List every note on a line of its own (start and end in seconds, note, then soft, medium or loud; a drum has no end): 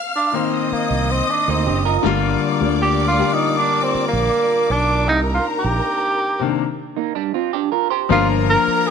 0.00 0.49 F5 medium
0.00 0.49 F6 medium
0.16 0.37 D4 loud
0.32 1.74 D#3 medium
0.32 1.75 A#3 medium
0.32 1.75 C4 medium
0.32 0.74 C4 medium
0.32 1.76 D#4 medium
0.52 2.01 D#5 medium
0.52 2.01 D#6 medium
0.72 1.13 A#3 medium
0.72 muted fingered electric bass stroke soft
0.90 1.20 C2 medium
1.11 1.32 C4 medium
1.30 1.51 D4 medium
1.48 1.68 D2 medium
1.48 1.66 A#3 medium
1.48 1.87 C4 medium
1.48 1.66 D#4 medium
1.67 1.97 F#1 medium
1.67 1.85 D4 medium
1.67 1.85 G4 medium
1.85 2.22 F4 medium
1.85 2.22 A#4 medium
2.03 2.34 G1 loud
2.03 2.57 D3 loud
2.03 2.57 G3 loud
2.03 5.05 G3 medium
2.03 2.58 A#3 medium
2.03 5.05 F4 medium
2.03 2.58 F4 loud
2.03 5.05 A#4 medium
2.03 5.04 D5 medium
2.03 5.04 D6 medium
2.60 3.21 D2 medium
2.60 3.14 D3 medium
2.60 3.14 G3 medium
2.60 3.15 A#3 medium
2.60 3.15 D4 medium
2.82 3.05 G4 loud
3.08 3.34 F4 loud
3.18 4.59 D3 medium
3.18 4.60 G3 medium
3.18 4.60 A#3 medium
3.18 4.61 G4 medium
3.33 3.57 D#4 medium
3.58 3.84 D4 loud
3.83 4.08 C4 medium
3.94 muted fingered electric bass stroke soft
4.08 4.73 A#3 loud
4.13 4.28 A#1 medium
4.70 5.07 B1 medium
4.70 5.08 D4 medium
5.07 5.38 C2 loud
5.07 6.58 C3 medium
5.07 6.57 A#3 medium
5.07 6.57 D4 medium
5.07 6.57 D#4 medium
5.07 5.20 D#4 medium
5.07 6.56 A#4 medium
5.07 6.56 A#5 medium
5.34 5.45 F4 medium
5.59 6.68 G4 medium
5.64 5.79 A#1 medium
6.39 6.59 C3 medium
6.39 6.60 D#3 medium
6.39 6.60 A#3 medium
6.39 6.60 D4 medium
6.96 7.15 A#3 medium
6.96 7.15 D#4 medium
7.15 7.34 G3 medium
7.15 7.34 D4 medium
7.34 7.53 C4 medium
7.34 7.53 F4 medium
7.53 7.72 D4 medium
7.53 7.71 G4 medium
7.72 7.91 F4 medium
7.72 7.90 A#4 medium
7.90 8.27 G4 medium
7.90 8.27 C5 medium
8.09 8.55 G1 loud
8.09 8.90 F3 medium
8.09 8.90 A#3 medium
8.09 8.90 D4 medium
8.09 8.90 F4 medium
8.09 8.28 F4 loud
8.09 8.90 A#4 medium
8.09 8.90 A#4 loud
8.09 8.90 A#5 loud
8.49 8.89 A#4 loud
8.67 muted fingered electric bass stroke soft
8.87 8.90 G#4 loud